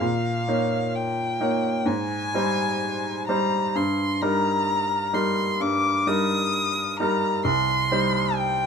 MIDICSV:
0, 0, Header, 1, 3, 480
1, 0, Start_track
1, 0, Key_signature, -3, "major"
1, 0, Tempo, 913242
1, 15, Time_signature, 4, 2, 24, 8
1, 975, Tempo, 944882
1, 1935, Tempo, 925926
1, 4485, End_track
2, 0, Start_track
2, 0, Title_t, "Violin"
2, 0, Program_c, 0, 40
2, 0, Note_on_c, 0, 77, 56
2, 499, Note_on_c, 0, 79, 47
2, 507, Note_off_c, 0, 77, 0
2, 978, Note_on_c, 0, 80, 68
2, 986, Note_off_c, 0, 79, 0
2, 1692, Note_off_c, 0, 80, 0
2, 1695, Note_on_c, 0, 82, 56
2, 1944, Note_on_c, 0, 84, 51
2, 1952, Note_off_c, 0, 82, 0
2, 2180, Note_on_c, 0, 82, 65
2, 2188, Note_off_c, 0, 84, 0
2, 2657, Note_on_c, 0, 84, 58
2, 2665, Note_off_c, 0, 82, 0
2, 2902, Note_on_c, 0, 86, 69
2, 2909, Note_off_c, 0, 84, 0
2, 3141, Note_on_c, 0, 87, 71
2, 3149, Note_off_c, 0, 86, 0
2, 3614, Note_off_c, 0, 87, 0
2, 3619, Note_on_c, 0, 82, 61
2, 3852, Note_off_c, 0, 82, 0
2, 3862, Note_on_c, 0, 84, 72
2, 4334, Note_on_c, 0, 79, 64
2, 4342, Note_off_c, 0, 84, 0
2, 4485, Note_off_c, 0, 79, 0
2, 4485, End_track
3, 0, Start_track
3, 0, Title_t, "Grand piano"
3, 0, Program_c, 1, 0
3, 0, Control_c, 1, 64, 127
3, 4, Note_on_c, 1, 46, 42
3, 22, Control_c, 1, 64, 0
3, 119, Control_c, 1, 64, 127
3, 241, Note_off_c, 1, 46, 0
3, 249, Note_on_c, 1, 58, 32
3, 255, Note_on_c, 1, 73, 33
3, 256, Note_on_c, 1, 63, 31
3, 710, Note_off_c, 1, 58, 0
3, 713, Note_off_c, 1, 63, 0
3, 713, Note_off_c, 1, 73, 0
3, 737, Note_on_c, 1, 58, 33
3, 738, Note_on_c, 1, 63, 32
3, 742, Note_on_c, 1, 73, 33
3, 956, Note_off_c, 1, 58, 0
3, 956, Note_off_c, 1, 63, 0
3, 958, Note_off_c, 1, 73, 0
3, 975, Note_on_c, 1, 44, 46
3, 982, Control_c, 1, 64, 0
3, 1071, Control_c, 1, 64, 127
3, 1204, Note_off_c, 1, 44, 0
3, 1222, Note_on_c, 1, 55, 33
3, 1225, Note_on_c, 1, 63, 36
3, 1228, Note_on_c, 1, 72, 32
3, 1680, Note_off_c, 1, 55, 0
3, 1681, Note_off_c, 1, 63, 0
3, 1682, Note_off_c, 1, 72, 0
3, 1702, Note_on_c, 1, 55, 36
3, 1703, Note_on_c, 1, 63, 33
3, 1706, Note_on_c, 1, 72, 37
3, 1919, Note_off_c, 1, 55, 0
3, 1919, Note_off_c, 1, 63, 0
3, 1921, Note_off_c, 1, 72, 0
3, 1939, Note_on_c, 1, 43, 44
3, 1945, Control_c, 1, 64, 0
3, 2032, Control_c, 1, 64, 127
3, 2173, Note_off_c, 1, 43, 0
3, 2180, Note_on_c, 1, 55, 35
3, 2183, Note_on_c, 1, 63, 34
3, 2184, Note_on_c, 1, 70, 40
3, 2637, Note_off_c, 1, 55, 0
3, 2638, Note_off_c, 1, 63, 0
3, 2639, Note_off_c, 1, 70, 0
3, 2654, Note_on_c, 1, 55, 34
3, 2654, Note_on_c, 1, 63, 32
3, 2657, Note_on_c, 1, 70, 34
3, 2876, Note_off_c, 1, 55, 0
3, 2876, Note_off_c, 1, 63, 0
3, 2877, Note_off_c, 1, 70, 0
3, 2898, Note_on_c, 1, 43, 37
3, 3131, Note_off_c, 1, 43, 0
3, 3137, Note_on_c, 1, 55, 37
3, 3140, Note_on_c, 1, 63, 34
3, 3144, Note_on_c, 1, 70, 37
3, 3592, Note_off_c, 1, 55, 0
3, 3593, Note_off_c, 1, 63, 0
3, 3595, Note_off_c, 1, 70, 0
3, 3622, Note_on_c, 1, 63, 33
3, 3623, Note_on_c, 1, 55, 34
3, 3628, Note_on_c, 1, 70, 36
3, 3837, Note_off_c, 1, 63, 0
3, 3838, Note_off_c, 1, 55, 0
3, 3840, Note_off_c, 1, 70, 0
3, 3853, Note_on_c, 1, 36, 45
3, 3862, Control_c, 1, 64, 0
3, 3929, Control_c, 1, 64, 127
3, 4085, Note_off_c, 1, 36, 0
3, 4096, Note_on_c, 1, 55, 34
3, 4098, Note_on_c, 1, 72, 38
3, 4100, Note_on_c, 1, 63, 34
3, 4485, Note_off_c, 1, 55, 0
3, 4485, Note_off_c, 1, 63, 0
3, 4485, Note_off_c, 1, 72, 0
3, 4485, End_track
0, 0, End_of_file